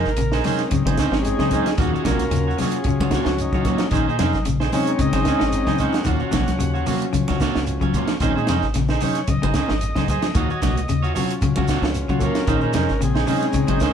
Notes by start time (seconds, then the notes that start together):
Already playing: C3 A#4
0.04 G#1, snare
0.09 shekere
0.17 A#1 C#3, closed hi-hat
0.21 shekere
0.32 D#4 G#4 C5, snare, shekere
0.44 C3 G#3 C4 C#4 D#4 G#4 C5, open hi-hat, high conga, low conga, shekere
0.59 snare, closed hi-hat, shekere
0.71 C#3, kick, closed hi-hat, high conga, shekere
0.85 G#1 C#3 D#4 G#4 C5, high conga, shekere
0.97 C#4 D#4 G#4 C5, muted fingered electric bass stroke, kick, snare, closed hi-hat, low conga, shekere
1.11 G#1 F3, snare, shekere
1.21 G4, closed hi-hat
1.26 G#4, shekere
1.39 C#3 D#4 G#4 C5, kick, snare, high conga, shekere
1.51 C#4 D#4 G#4 C5, kick, closed hi-hat, high conga, low conga, shekere
1.66 F3, snare, closed hi-hat, shekere
1.78 D#2 D#3 F#3 A#3 C#4 F4 F#4 C#5, kick, closed hi-hat, shekere
1.92 D#3 F4 F#4 C#5, shekere
2.05 A#1 C3 A#3 F4 F#4 A#4 C#5, kick, snare, closed hi-hat, high conga, shekere
2.18 C#2, snare, closed hi-hat
2.23 shekere
2.31 D#2 C#3, snare, closed hi-hat
2.36 shekere
2.47 F#4 C#5, shekere
2.58 C3 A#3 F4 F#4 G#4 C#5, snare, open hi-hat, high conga, low conga, shekere
2.72 closed hi-hat
2.76 shekere
2.84 C#3 G#4, kick, closed hi-hat
2.88 shekere
3.00 C#2 C#3 F4 F#4 C#5, high conga, shekere
3.10 F4, kick, snare, closed hi-hat
3.14 A#3 F4 F#4 C#5, shekere
3.25 C#2 F3, snare
3.29 shekere
3.38 D#4, closed hi-hat, shekere
3.53 C#3 F4 F#4 C#5, kick, high conga, shekere
3.65 A#3 F4 F#4 C#5, kick, closed hi-hat, high conga, low conga, shekere
3.78 F3, snare, closed hi-hat, shekere
3.91 A#1 D#3 C#4 D#4 G#4 C5, kick, snare, closed hi-hat, shekere
4.07 A#2 D#4 G#4 C5, shekere
4.19 F2 C3 C#4 D#4 G#4 C5, snare, closed hi-hat, high conga, shekere
4.33 G#1, snare, high conga, shekere
4.45 A#1 C#3, closed hi-hat, shekere
4.60 D#4 G#4 C5, snare, shekere
4.70 C3 G#3 C4 C#4 D#4 G#4 C5, open hi-hat, high conga, low conga, shekere
4.74 D#4 C#5
4.87 closed hi-hat, shekere
4.99 C#3 D#5, kick, closed hi-hat, low conga, shekere
5.13 G#1 C#3 D#4 G#4 C5, snare, high conga, shekere
5.25 C#4 D#4 G#4 C5, kick, snare, closed hi-hat, shekere
5.40 G#1 F3, snare, shekere
5.52 closed hi-hat, shekere
5.66 C#3 D#4 G#4 C5, kick, snare, high conga, shekere
5.78 C#4 D#4 G#4 C5 F#5, kick, snare, closed hi-hat, low conga, shekere
5.92 F3, snare, closed hi-hat, shekere
6.04 D#2 D#3 F3 F#3 A#3 C#4 F4 F#4, muted clean electric guitar stroke, kick, snare, closed hi-hat, shekere
6.20 D#3 F4 F#4 C#5, shekere
6.31 A#1 C3 A#3 F#4 C#5, kick, snare, closed hi-hat, high conga, shekere
6.47 C#2, snare, closed hi-hat, high conga, shekere
6.59 D#2 C#3, closed hi-hat, shekere
6.74 F4 F#4 C#5, shekere
6.86 C3 A#3 F4 F#4 C#5, open hi-hat, high conga, low conga, shekere
7.01 closed hi-hat, shekere
7.13 C#3, kick, closed hi-hat, high conga, shekere
7.28 C#2 C#3 F4 F#4 C#5, snare, high conga, shekere
7.40 A#3 F4 F#4 C#5, muted fingered electric bass stroke, kick, snare, closed hi-hat, low conga, shekere
7.55 C#2, snare, shekere
7.67 closed hi-hat, shekere
7.81 C#3 F4 C#5, muted clean electric guitar stroke, kick, high conga, shekere
7.94 A#3 F4 C#5, muted clean electric guitar stroke, kick, closed hi-hat, low conga, shekere
8.08 F3, snare, closed hi-hat, shekere
8.20 A#1 D#3 G#3 C4 C#4 D#4 G#4 C5, kick, closed hi-hat, shekere
8.35 A#2 D#4 G#4 C5, shekere
8.47 F2 C3 C#4 D#4 G#4 C5, snare, closed hi-hat, high conga, shekere
8.61 G#1, snare, shekere
8.74 A#1 C#3, snare, closed hi-hat, shekere
8.88 D#4 G#4 C5, snare, shekere
8.98 C3 C5, open hi-hat, shekere
9.02 C#4 D#4 G#4 C5 C#5, high conga, low conga
9.15 snare, closed hi-hat, shekere
9.27 C#3 D#5, kick, closed hi-hat, high conga, shekere
9.42 G#1 C#3 D#4 G#4 C5, high conga, shekere
9.54 C#4 D#4 G#4 C5, kick, snare, closed hi-hat, low conga, shekere
9.69 G#1 F3, snare, shekere
9.81 closed hi-hat, shekere
9.95 C#3 D#4 G#4 C5, kick, snare, high conga, shekere
10.08 G#4 C5 D#5, muted clean electric guitar stroke, kick, snare, closed hi-hat, high conga, low conga, shekere
10.22 F3, snare, closed hi-hat, shekere
10.35 D#2 D#3 A#3 F4 F#4 C#5, kick, closed hi-hat, shekere
10.48 D#3 F#4 C#5, shekere
10.62 A#1 C3 A#3 F#4 C#5, muted clean electric guitar stroke, kick, snare, closed hi-hat, high conga, shekere
10.76 C#2, closed hi-hat, shekere
10.89 D#2 C#3, closed hi-hat, shekere
11.03 F4 F#4 C#5, shekere
11.14 C3 F#3 C#4 F4 F#4 C#5, muted clean electric guitar stroke, open hi-hat, high conga, low conga, shekere
11.30 closed hi-hat, shekere
11.41 C#3, kick, closed hi-hat, high conga, shekere
11.56 C#2 C#3 F4 F#4 C#5, high conga, shekere
11.68 A#3 F4 F#4 C#5, kick, snare, closed hi-hat, shekere
11.82 C#2 F3, snare, shekere
11.94 closed hi-hat, shekere
12.09 C#3 F4 F#4 C#5, kick, high conga, shekere
12.19 A#3 F4 A4, kick, closed hi-hat, high conga, low conga, shekere
12.24 C#4 A#4 C#5
12.35 snare, closed hi-hat, shekere
12.47 A#1 D#3 C#4 D#4 G#4 A#4 C5, kick, snare, closed hi-hat, shekere
12.61 A#2 D#4 G#4 C5, shekere
12.73 F2 C3 C#4 D#4 G#4 A#4 C5, snare, closed hi-hat, high conga, shekere
12.89 G#1, snare, shekere
13.01 A#1 C#3 C4 G#4, closed hi-hat, shekere
13.15 D#4 G#4 C5, snare, shekere
13.27 C3 G#3 C4 C#4 D#4 G#4 C5, open hi-hat, high conga, low conga, shekere
13.41 snare, closed hi-hat, shekere
13.53 C#3 C4 G#4, kick, closed hi-hat, shekere
13.67 G#1 C#3 D#4 G#4 C5, high conga, shekere
13.80 A#3 C#4 D#4 G#4 C5, muted fingered electric bass stroke, kick, snare, closed hi-hat, shekere